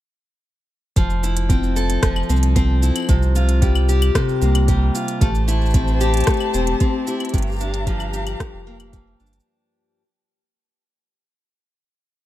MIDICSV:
0, 0, Header, 1, 5, 480
1, 0, Start_track
1, 0, Key_signature, -1, "major"
1, 0, Tempo, 530973
1, 873, Time_signature, 4, 2, 24, 8
1, 11075, End_track
2, 0, Start_track
2, 0, Title_t, "String quartet"
2, 0, Program_c, 0, 48
2, 4707, Note_on_c, 0, 81, 88
2, 4708, Note_on_c, 0, 67, 73
2, 4708, Note_on_c, 0, 72, 65
2, 6611, Note_off_c, 0, 72, 0
2, 6611, Note_off_c, 0, 81, 0
2, 6627, Note_on_c, 0, 77, 72
2, 6628, Note_on_c, 0, 82, 82
2, 8514, Note_off_c, 0, 67, 0
2, 8531, Note_off_c, 0, 77, 0
2, 8531, Note_off_c, 0, 82, 0
2, 11075, End_track
3, 0, Start_track
3, 0, Title_t, "Steel-string acoustic guitar"
3, 0, Program_c, 1, 25
3, 873, Note_on_c, 1, 53, 74
3, 1115, Note_on_c, 1, 64, 52
3, 1353, Note_on_c, 1, 60, 63
3, 1593, Note_on_c, 1, 69, 65
3, 1828, Note_off_c, 1, 53, 0
3, 1831, Note_on_c, 1, 53, 75
3, 2070, Note_off_c, 1, 60, 0
3, 2073, Note_on_c, 1, 60, 58
3, 2308, Note_off_c, 1, 60, 0
3, 2311, Note_on_c, 1, 60, 62
3, 2541, Note_off_c, 1, 64, 0
3, 2551, Note_on_c, 1, 64, 56
3, 2793, Note_on_c, 1, 48, 72
3, 2840, Note_off_c, 1, 64, 0
3, 2841, Note_off_c, 1, 69, 0
3, 3032, Note_on_c, 1, 65, 57
3, 3270, Note_off_c, 1, 53, 0
3, 3274, Note_on_c, 1, 55, 65
3, 3515, Note_on_c, 1, 67, 67
3, 3742, Note_off_c, 1, 48, 0
3, 3752, Note_on_c, 1, 48, 83
3, 3987, Note_off_c, 1, 60, 0
3, 3991, Note_on_c, 1, 58, 62
3, 4231, Note_off_c, 1, 55, 0
3, 4234, Note_on_c, 1, 55, 68
3, 4461, Note_off_c, 1, 65, 0
3, 4472, Note_on_c, 1, 65, 58
3, 4710, Note_off_c, 1, 55, 0
3, 4714, Note_on_c, 1, 57, 84
3, 4760, Note_off_c, 1, 58, 0
3, 4760, Note_off_c, 1, 65, 0
3, 4761, Note_off_c, 1, 48, 0
3, 4951, Note_on_c, 1, 64, 58
3, 5193, Note_on_c, 1, 60, 63
3, 5426, Note_off_c, 1, 67, 0
3, 5430, Note_on_c, 1, 67, 72
3, 5661, Note_off_c, 1, 57, 0
3, 5672, Note_on_c, 1, 57, 78
3, 5901, Note_off_c, 1, 60, 0
3, 5912, Note_on_c, 1, 60, 62
3, 6141, Note_off_c, 1, 60, 0
3, 6152, Note_on_c, 1, 60, 68
3, 6380, Note_off_c, 1, 64, 0
3, 6391, Note_on_c, 1, 64, 61
3, 6633, Note_on_c, 1, 43, 88
3, 6680, Note_off_c, 1, 57, 0
3, 6680, Note_off_c, 1, 60, 0
3, 6680, Note_off_c, 1, 64, 0
3, 6875, Note_on_c, 1, 62, 57
3, 7114, Note_on_c, 1, 53, 70
3, 7141, Note_off_c, 1, 67, 0
3, 7354, Note_on_c, 1, 67, 68
3, 7594, Note_off_c, 1, 43, 0
3, 7598, Note_on_c, 1, 43, 83
3, 7836, Note_on_c, 1, 58, 64
3, 8072, Note_off_c, 1, 53, 0
3, 8075, Note_on_c, 1, 53, 65
3, 8311, Note_off_c, 1, 62, 0
3, 8314, Note_on_c, 1, 62, 60
3, 9054, Note_off_c, 1, 53, 0
3, 9054, Note_off_c, 1, 62, 0
3, 9055, Note_off_c, 1, 43, 0
3, 9055, Note_off_c, 1, 58, 0
3, 9055, Note_off_c, 1, 67, 0
3, 11075, End_track
4, 0, Start_track
4, 0, Title_t, "Sub bass"
4, 0, Program_c, 2, 38
4, 870, Note_on_c, 2, 29, 92
4, 1789, Note_off_c, 2, 29, 0
4, 1833, Note_on_c, 2, 29, 83
4, 2020, Note_off_c, 2, 29, 0
4, 2072, Note_on_c, 2, 36, 89
4, 2630, Note_off_c, 2, 36, 0
4, 2791, Note_on_c, 2, 36, 91
4, 3709, Note_off_c, 2, 36, 0
4, 3991, Note_on_c, 2, 36, 83
4, 4430, Note_off_c, 2, 36, 0
4, 4710, Note_on_c, 2, 33, 100
4, 5629, Note_off_c, 2, 33, 0
4, 5913, Note_on_c, 2, 28, 87
4, 6100, Note_off_c, 2, 28, 0
4, 6632, Note_on_c, 2, 31, 98
4, 7550, Note_off_c, 2, 31, 0
4, 7717, Note_on_c, 2, 29, 91
4, 8272, Note_off_c, 2, 29, 0
4, 8318, Note_on_c, 2, 31, 113
4, 8502, Note_off_c, 2, 31, 0
4, 11075, End_track
5, 0, Start_track
5, 0, Title_t, "Drums"
5, 870, Note_on_c, 9, 36, 89
5, 871, Note_on_c, 9, 42, 41
5, 873, Note_on_c, 9, 82, 38
5, 960, Note_off_c, 9, 36, 0
5, 962, Note_off_c, 9, 42, 0
5, 964, Note_off_c, 9, 82, 0
5, 994, Note_on_c, 9, 82, 28
5, 1084, Note_off_c, 9, 82, 0
5, 1116, Note_on_c, 9, 82, 76
5, 1206, Note_off_c, 9, 82, 0
5, 1235, Note_on_c, 9, 42, 51
5, 1237, Note_on_c, 9, 82, 27
5, 1325, Note_off_c, 9, 42, 0
5, 1327, Note_off_c, 9, 82, 0
5, 1350, Note_on_c, 9, 36, 92
5, 1355, Note_on_c, 9, 42, 43
5, 1357, Note_on_c, 9, 82, 40
5, 1440, Note_off_c, 9, 36, 0
5, 1445, Note_off_c, 9, 42, 0
5, 1447, Note_off_c, 9, 82, 0
5, 1477, Note_on_c, 9, 82, 26
5, 1567, Note_off_c, 9, 82, 0
5, 1594, Note_on_c, 9, 82, 69
5, 1684, Note_off_c, 9, 82, 0
5, 1715, Note_on_c, 9, 42, 54
5, 1716, Note_on_c, 9, 82, 31
5, 1805, Note_off_c, 9, 42, 0
5, 1807, Note_off_c, 9, 82, 0
5, 1831, Note_on_c, 9, 36, 85
5, 1832, Note_on_c, 9, 37, 70
5, 1832, Note_on_c, 9, 42, 41
5, 1834, Note_on_c, 9, 82, 43
5, 1921, Note_off_c, 9, 36, 0
5, 1923, Note_off_c, 9, 37, 0
5, 1923, Note_off_c, 9, 42, 0
5, 1925, Note_off_c, 9, 82, 0
5, 1954, Note_on_c, 9, 75, 68
5, 1956, Note_on_c, 9, 82, 12
5, 2015, Note_off_c, 9, 82, 0
5, 2015, Note_on_c, 9, 82, 15
5, 2045, Note_off_c, 9, 75, 0
5, 2075, Note_off_c, 9, 82, 0
5, 2075, Note_on_c, 9, 82, 69
5, 2136, Note_off_c, 9, 82, 0
5, 2136, Note_on_c, 9, 82, 21
5, 2196, Note_on_c, 9, 42, 55
5, 2197, Note_off_c, 9, 82, 0
5, 2197, Note_on_c, 9, 82, 30
5, 2286, Note_off_c, 9, 42, 0
5, 2288, Note_off_c, 9, 82, 0
5, 2311, Note_on_c, 9, 36, 100
5, 2314, Note_on_c, 9, 42, 40
5, 2316, Note_on_c, 9, 82, 42
5, 2401, Note_off_c, 9, 36, 0
5, 2405, Note_off_c, 9, 42, 0
5, 2407, Note_off_c, 9, 82, 0
5, 2556, Note_on_c, 9, 82, 78
5, 2646, Note_off_c, 9, 82, 0
5, 2672, Note_on_c, 9, 42, 52
5, 2672, Note_on_c, 9, 75, 53
5, 2674, Note_on_c, 9, 82, 31
5, 2694, Note_off_c, 9, 75, 0
5, 2694, Note_on_c, 9, 75, 42
5, 2712, Note_off_c, 9, 75, 0
5, 2712, Note_on_c, 9, 75, 35
5, 2734, Note_off_c, 9, 75, 0
5, 2734, Note_on_c, 9, 75, 27
5, 2752, Note_off_c, 9, 75, 0
5, 2752, Note_on_c, 9, 75, 23
5, 2763, Note_off_c, 9, 42, 0
5, 2765, Note_off_c, 9, 82, 0
5, 2773, Note_off_c, 9, 75, 0
5, 2773, Note_on_c, 9, 75, 18
5, 2791, Note_on_c, 9, 36, 103
5, 2791, Note_on_c, 9, 42, 45
5, 2793, Note_on_c, 9, 82, 43
5, 2863, Note_off_c, 9, 75, 0
5, 2881, Note_off_c, 9, 42, 0
5, 2882, Note_off_c, 9, 36, 0
5, 2883, Note_off_c, 9, 82, 0
5, 2915, Note_on_c, 9, 82, 29
5, 3006, Note_off_c, 9, 82, 0
5, 3033, Note_on_c, 9, 82, 76
5, 3123, Note_off_c, 9, 82, 0
5, 3152, Note_on_c, 9, 42, 49
5, 3154, Note_on_c, 9, 82, 30
5, 3243, Note_off_c, 9, 42, 0
5, 3245, Note_off_c, 9, 82, 0
5, 3271, Note_on_c, 9, 36, 99
5, 3273, Note_on_c, 9, 42, 44
5, 3275, Note_on_c, 9, 82, 43
5, 3362, Note_off_c, 9, 36, 0
5, 3363, Note_off_c, 9, 42, 0
5, 3365, Note_off_c, 9, 82, 0
5, 3394, Note_on_c, 9, 75, 68
5, 3396, Note_on_c, 9, 82, 28
5, 3484, Note_off_c, 9, 75, 0
5, 3486, Note_off_c, 9, 82, 0
5, 3515, Note_on_c, 9, 82, 70
5, 3606, Note_off_c, 9, 82, 0
5, 3634, Note_on_c, 9, 42, 53
5, 3634, Note_on_c, 9, 75, 71
5, 3636, Note_on_c, 9, 82, 32
5, 3725, Note_off_c, 9, 42, 0
5, 3725, Note_off_c, 9, 75, 0
5, 3727, Note_off_c, 9, 82, 0
5, 3751, Note_on_c, 9, 36, 90
5, 3754, Note_on_c, 9, 37, 82
5, 3754, Note_on_c, 9, 42, 41
5, 3756, Note_on_c, 9, 82, 44
5, 3841, Note_off_c, 9, 36, 0
5, 3844, Note_off_c, 9, 37, 0
5, 3844, Note_off_c, 9, 42, 0
5, 3846, Note_off_c, 9, 82, 0
5, 3876, Note_on_c, 9, 82, 28
5, 3966, Note_off_c, 9, 82, 0
5, 3994, Note_on_c, 9, 82, 67
5, 4084, Note_off_c, 9, 82, 0
5, 4113, Note_on_c, 9, 42, 56
5, 4113, Note_on_c, 9, 75, 74
5, 4204, Note_off_c, 9, 42, 0
5, 4204, Note_off_c, 9, 75, 0
5, 4231, Note_on_c, 9, 36, 109
5, 4232, Note_on_c, 9, 42, 41
5, 4234, Note_on_c, 9, 82, 42
5, 4321, Note_off_c, 9, 36, 0
5, 4323, Note_off_c, 9, 42, 0
5, 4325, Note_off_c, 9, 82, 0
5, 4475, Note_on_c, 9, 82, 79
5, 4565, Note_off_c, 9, 82, 0
5, 4594, Note_on_c, 9, 42, 53
5, 4596, Note_on_c, 9, 82, 30
5, 4685, Note_off_c, 9, 42, 0
5, 4687, Note_off_c, 9, 82, 0
5, 4710, Note_on_c, 9, 36, 106
5, 4713, Note_on_c, 9, 42, 40
5, 4715, Note_on_c, 9, 82, 43
5, 4800, Note_off_c, 9, 36, 0
5, 4803, Note_off_c, 9, 42, 0
5, 4805, Note_off_c, 9, 82, 0
5, 4835, Note_on_c, 9, 82, 31
5, 4925, Note_off_c, 9, 82, 0
5, 4955, Note_on_c, 9, 82, 77
5, 5046, Note_off_c, 9, 82, 0
5, 5076, Note_on_c, 9, 82, 15
5, 5114, Note_off_c, 9, 82, 0
5, 5114, Note_on_c, 9, 82, 20
5, 5154, Note_off_c, 9, 82, 0
5, 5154, Note_on_c, 9, 82, 23
5, 5190, Note_on_c, 9, 36, 102
5, 5190, Note_on_c, 9, 42, 53
5, 5192, Note_off_c, 9, 82, 0
5, 5192, Note_on_c, 9, 82, 43
5, 5280, Note_off_c, 9, 36, 0
5, 5281, Note_off_c, 9, 42, 0
5, 5283, Note_off_c, 9, 82, 0
5, 5312, Note_on_c, 9, 82, 29
5, 5402, Note_off_c, 9, 82, 0
5, 5430, Note_on_c, 9, 82, 74
5, 5520, Note_off_c, 9, 82, 0
5, 5548, Note_on_c, 9, 42, 48
5, 5578, Note_off_c, 9, 42, 0
5, 5578, Note_on_c, 9, 42, 41
5, 5609, Note_off_c, 9, 42, 0
5, 5609, Note_on_c, 9, 42, 31
5, 5639, Note_off_c, 9, 42, 0
5, 5639, Note_on_c, 9, 42, 27
5, 5668, Note_off_c, 9, 42, 0
5, 5668, Note_on_c, 9, 37, 77
5, 5668, Note_on_c, 9, 42, 39
5, 5670, Note_on_c, 9, 82, 44
5, 5671, Note_on_c, 9, 36, 94
5, 5699, Note_off_c, 9, 42, 0
5, 5699, Note_on_c, 9, 42, 17
5, 5730, Note_off_c, 9, 42, 0
5, 5730, Note_on_c, 9, 42, 15
5, 5758, Note_off_c, 9, 37, 0
5, 5760, Note_off_c, 9, 82, 0
5, 5761, Note_off_c, 9, 36, 0
5, 5789, Note_on_c, 9, 75, 62
5, 5791, Note_on_c, 9, 82, 28
5, 5820, Note_off_c, 9, 42, 0
5, 5880, Note_off_c, 9, 75, 0
5, 5882, Note_off_c, 9, 82, 0
5, 5912, Note_on_c, 9, 82, 73
5, 6002, Note_off_c, 9, 82, 0
5, 6031, Note_on_c, 9, 42, 53
5, 6121, Note_off_c, 9, 42, 0
5, 6150, Note_on_c, 9, 42, 38
5, 6151, Note_on_c, 9, 36, 108
5, 6152, Note_on_c, 9, 82, 41
5, 6240, Note_off_c, 9, 42, 0
5, 6242, Note_off_c, 9, 36, 0
5, 6242, Note_off_c, 9, 82, 0
5, 6393, Note_on_c, 9, 82, 79
5, 6483, Note_off_c, 9, 82, 0
5, 6511, Note_on_c, 9, 42, 22
5, 6511, Note_on_c, 9, 75, 51
5, 6552, Note_off_c, 9, 42, 0
5, 6552, Note_on_c, 9, 42, 28
5, 6592, Note_off_c, 9, 42, 0
5, 6592, Note_on_c, 9, 42, 29
5, 6601, Note_off_c, 9, 75, 0
5, 6631, Note_on_c, 9, 36, 104
5, 6633, Note_off_c, 9, 42, 0
5, 6633, Note_on_c, 9, 42, 39
5, 6635, Note_on_c, 9, 82, 42
5, 6673, Note_off_c, 9, 42, 0
5, 6673, Note_on_c, 9, 42, 41
5, 6712, Note_off_c, 9, 42, 0
5, 6712, Note_on_c, 9, 42, 48
5, 6721, Note_off_c, 9, 36, 0
5, 6725, Note_off_c, 9, 82, 0
5, 6755, Note_on_c, 9, 82, 13
5, 6775, Note_off_c, 9, 82, 0
5, 6775, Note_on_c, 9, 82, 14
5, 6796, Note_off_c, 9, 82, 0
5, 6796, Note_on_c, 9, 82, 19
5, 6802, Note_off_c, 9, 42, 0
5, 6815, Note_off_c, 9, 82, 0
5, 6815, Note_on_c, 9, 82, 18
5, 6834, Note_off_c, 9, 82, 0
5, 6834, Note_on_c, 9, 82, 23
5, 6855, Note_off_c, 9, 82, 0
5, 6855, Note_on_c, 9, 82, 26
5, 6874, Note_off_c, 9, 82, 0
5, 6874, Note_on_c, 9, 82, 78
5, 6965, Note_off_c, 9, 82, 0
5, 6994, Note_on_c, 9, 42, 51
5, 6996, Note_on_c, 9, 82, 33
5, 7085, Note_off_c, 9, 42, 0
5, 7086, Note_off_c, 9, 82, 0
5, 7111, Note_on_c, 9, 36, 101
5, 7114, Note_on_c, 9, 42, 40
5, 7116, Note_on_c, 9, 82, 42
5, 7201, Note_off_c, 9, 36, 0
5, 7204, Note_off_c, 9, 42, 0
5, 7206, Note_off_c, 9, 82, 0
5, 7232, Note_on_c, 9, 75, 67
5, 7234, Note_on_c, 9, 82, 31
5, 7322, Note_off_c, 9, 75, 0
5, 7324, Note_off_c, 9, 82, 0
5, 7354, Note_on_c, 9, 82, 74
5, 7445, Note_off_c, 9, 82, 0
5, 7473, Note_on_c, 9, 42, 48
5, 7473, Note_on_c, 9, 75, 73
5, 7474, Note_on_c, 9, 82, 36
5, 7563, Note_off_c, 9, 42, 0
5, 7563, Note_off_c, 9, 75, 0
5, 7565, Note_off_c, 9, 82, 0
5, 7592, Note_on_c, 9, 36, 105
5, 7596, Note_on_c, 9, 37, 78
5, 7596, Note_on_c, 9, 42, 41
5, 7598, Note_on_c, 9, 82, 45
5, 7682, Note_off_c, 9, 36, 0
5, 7686, Note_off_c, 9, 37, 0
5, 7686, Note_off_c, 9, 42, 0
5, 7688, Note_off_c, 9, 82, 0
5, 7954, Note_on_c, 9, 42, 52
5, 7954, Note_on_c, 9, 75, 72
5, 7956, Note_on_c, 9, 82, 33
5, 8044, Note_off_c, 9, 42, 0
5, 8044, Note_off_c, 9, 75, 0
5, 8046, Note_off_c, 9, 82, 0
5, 8072, Note_on_c, 9, 36, 102
5, 8074, Note_on_c, 9, 42, 40
5, 8076, Note_on_c, 9, 82, 44
5, 8163, Note_off_c, 9, 36, 0
5, 8164, Note_off_c, 9, 42, 0
5, 8166, Note_off_c, 9, 82, 0
5, 8316, Note_on_c, 9, 82, 34
5, 8375, Note_off_c, 9, 82, 0
5, 8375, Note_on_c, 9, 82, 44
5, 8434, Note_on_c, 9, 42, 46
5, 8436, Note_off_c, 9, 82, 0
5, 8436, Note_on_c, 9, 82, 55
5, 8497, Note_off_c, 9, 82, 0
5, 8497, Note_on_c, 9, 82, 60
5, 8525, Note_off_c, 9, 42, 0
5, 8587, Note_off_c, 9, 82, 0
5, 11075, End_track
0, 0, End_of_file